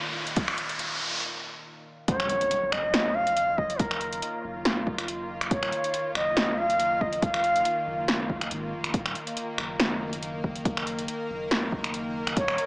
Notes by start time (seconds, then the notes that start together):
Already playing: A#2 D#3 F4, riser
0.27 closed hi-hat
0.36 kick, closed hi-hat
0.48 finger snap
0.58 closed hi-hat
0.69 closed hi-hat
0.79 closed hi-hat
2.08 D#1 D#3 A#3 F4 C#5, kick, closed hi-hat, impact
2.20 finger snap
2.29 closed hi-hat
2.41 closed hi-hat
2.51 closed hi-hat
2.72 F#1 D#5, finger snap
2.94 finger snap, snare, closed hi-hat
3.15 F5
3.27 closed hi-hat
3.37 closed hi-hat
3.58 D#5, kick
3.70 closed hi-hat
3.79 A#4, kick, closed hi-hat
3.91 finger snap
4.01 closed hi-hat
4.13 closed hi-hat
4.22 closed hi-hat
4.44 F#1
4.65 snare, closed hi-hat
4.87 kick
4.98 finger snap, closed hi-hat
5.08 closed hi-hat
5.41 finger snap, closed hi-hat
5.51 D#1 C#5, kick, closed hi-hat
5.63 finger snap
5.72 closed hi-hat
5.84 closed hi-hat
5.94 closed hi-hat
6.15 F#1 D#5, finger snap
6.37 finger snap, snare, closed hi-hat
6.58 F5
6.70 closed hi-hat
6.80 closed hi-hat
7.01 D#5, kick
7.13 closed hi-hat
7.22 F5, kick, closed hi-hat
7.34 finger snap
7.44 closed hi-hat
7.56 closed hi-hat
7.65 closed hi-hat
7.87 F#1
8.08 snare, closed hi-hat
8.30 kick
8.41 finger snap, closed hi-hat
8.51 G#1, closed hi-hat
8.72 F1
8.84 finger snap, closed hi-hat
8.94 D#1 A#4, kick, closed hi-hat
9.06 finger snap
9.15 closed hi-hat
9.27 closed hi-hat
9.37 closed hi-hat
9.58 F#1, finger snap
9.80 finger snap, snare, closed hi-hat
10.13 closed hi-hat
10.23 closed hi-hat
10.44 kick
10.56 closed hi-hat
10.65 kick, closed hi-hat
10.77 finger snap
10.87 closed hi-hat
10.99 closed hi-hat
11.08 closed hi-hat
11.30 F#1
11.51 snare, closed hi-hat
11.72 kick
11.84 finger snap, closed hi-hat
11.94 closed hi-hat
12.27 finger snap, closed hi-hat
12.37 D#1 C#5, kick, closed hi-hat
12.48 finger snap
12.58 closed hi-hat